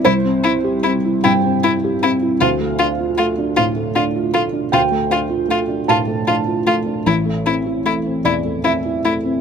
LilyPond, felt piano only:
\new Staff \with { instrumentName = "Felt piano" } { \time 6/8 \key d \minor \tempo 4. = 51 << { c''4. g''4. | f''2. | g''4. a''4. | r4. d''8 e''4 | } \\ { <c, e'>16 c'16 e'16 g'16 c'16 e'16 g,16 c'16 e'16 g'16 c'16 e'16 | d,16 a16 d'16 f'16 a16 d'16 a,16 a16 d'16 f'16 a16 d'16 | d,16 a16 d'16 f'16 a16 d'16 a,16 a16 d'16 f'16 a16 d'16 | a,,16 a16 c'16 e'16 a16 c'16 e,16 a16 c'16 e'16 a16 c'16 | } >> }